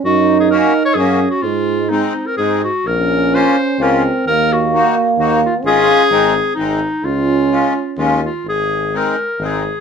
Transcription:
X:1
M:3/4
L:1/16
Q:1/4=128
K:Abmix
V:1 name="Clarinet"
G3 A B3 d A3 G | F4 E3 B A2 G2 | B4 c4 B4 | B2 G6 z2 F2 |
A8 E4 | F8 z2 F2 | A4 B4 A4 |]
V:2 name="Accordion"
z4 [B,DG]2 z2 [B,DG]2 z2 | z4 [A,CE]2 z2 [A,CE]2 z2 | z4 [B,DF]2 z2 [B,DF]2 z2 | z4 [B,EG]2 z2 [B,EG]2 z2 |
[A,DF]4 [A,CE]2 z2 [A,CE]2 z2 | z4 [A,DF]2 z2 [A,DF]2 z2 | z4 [A,CE]2 z2 [A,CE]2 z2 |]
V:3 name="Euphonium"
E8 D4 | A,4 C6 z2 | D8 C4 | B,12 |
D4 C6 z2 | D8- D2 z2 | z12 |]
V:4 name="Tuba" clef=bass
G,,8 G,,4 | A,,8 A,,4 | B,,,8 D,,4 | E,,8 E,,4 |
A,,,4 A,,,4 A,,,4 | D,,8 E,,4 | A,,,8 A,,,4 |]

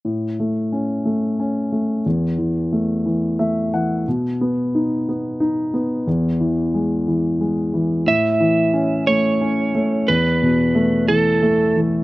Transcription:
X:1
M:6/8
L:1/8
Q:3/8=60
K:A
V:1 name="Lead electric guitar"
z6 | z6 | z6 | z6 |
e3 c3 | B3 A2 z |]
V:2 name="Grand piano"
A,, A, C A, C A, | E,, E, A, E, [A,e] [E,f] | B,, B, ^D B, D B, | E,, E, G, E, G, E, |
A,, E, C A, C A, | E,, B,, A, E, A, E, |]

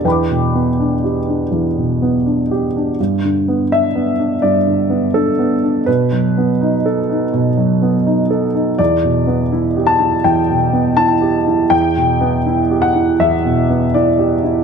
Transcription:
X:1
M:4/4
L:1/8
Q:1/4=82
K:Em
V:1 name="Upright piano"
[Bgbd']8 | z2 e2 d2 A2 | B8 | d3 a g2 a2 |
g3 f e2 d2 |]
V:2 name="Upright piano"
(3[E,,D] B,, B, (3D G D (3E,, B,, B, (3D G D | (3G,, D, B, (3D B, D (3G,, D, B, (3D B, D | (3B,, F, B, (3^D A D (3B,, F, B, (3D A D | (3E,, B,, B, (3E G E (3E,, B,, B, (3E G E |
(3E,, B,, B, (3E G E (3E,, B,, B, (3E G E |]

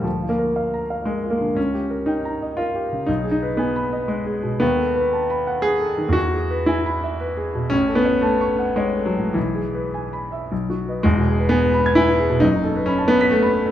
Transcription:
X:1
M:3/4
L:1/16
Q:1/4=118
K:Ablyd
V:1 name="Grand piano"
(3D,,2 F2 B2 (3f2 b2 f2 (3B2 F2 D,2 | (3_D,,2 G2 B2 (3g2 b2 e2 (3B2 G2 _D,2 | (3_C,,2 A2 _c2 (3a2 _c'2 e2 (3c2 A2 _C,2 | [K:E] (3D,,2 A2 B2 (3a2 b2 f2 (3B2 A2 D,2 |
(3E,,2 G2 B2 (3g2 b2 e2 (3B2 G2 B,,2 | (3A,,,2 A2 c2 (3a2 c'2 f2 (3c2 A2 A,,2 | (3B,,,2 G2 B2 (3g2 b2 e2 (3B,,,2 F2 [Bd]2 | [E,,,E,,] B,, G B g B b g' g B G B,, |
[F,,,F,,] F, A B b a b b' a b B A |]
V:2 name="Grand piano"
F,2 B,4 z2 A,2 B,2 | _D4 E4 F4 | E2 E2 _C4 A,2 z2 | [K:E] B,8 G4 |
F4 E6 z2 | C2 B,2 A,4 G,2 F,2 | E,8 z4 | G,4 B,4 E4 |
D4 C2 B,2 A,4 |]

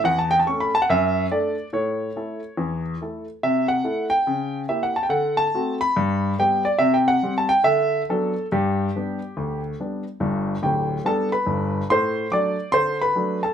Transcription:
X:1
M:4/4
L:1/16
Q:"Swing" 1/4=142
K:Amix
V:1 name="Grand piano"
f a g a c' b a f e4 d4 | c12 z4 | [K:G] e2 f4 g6 e f a g | f2 a4 b6 g2 d2 |
e g f3 a g2 e4 A4 | G12 z4 | z4 [Gg]4 [Aa]2 [Bb]6 | [cc']4 [dd']4 [cc']2 [Bb]4 [Aa]2 |]
V:2 name="Grand piano"
E,,4 [A,CA]4 F,,4 [A,DA]4 | A,,4 [A,EA]4 E,,4 [A,EA]4 | [K:G] C,4 [A,EA]4 ^C,4 [^A,EG]4 | D,4 [A,CF]4 G,,4 [G,B,G]4 |
C,4 [G,CG]4 D,4 [F,B,D]4 | G,,4 [G,B,D]4 D,,4 [G,B,D]4 | [G,,,G,,]4 [D,,,D,,]4 [G,B,D]4 [G,,,G,,]4 | A,,4 [F,A,D]4 D,4 [F,A,D]4 |]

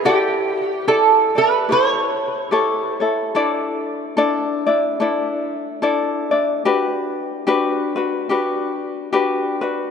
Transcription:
X:1
M:4/4
L:1/8
Q:"Swing" 1/4=73
K:D
V:1 name="Resonator guitar played with a steel bar"
G2 A B c2 z2 | z8 | z8 |]
V:2 name="Ukulele"
[EGAd]2 [EGAd] [EAd] [EGAc]2 [EGAc] [EAc] | [DEAd]2 [DEAd] [DEd] [DEAd]2 [DEAd] [DEd] | [DFGB]2 [DFGB] [DFB] [DFGB]2 [DFGB] [DFB] |]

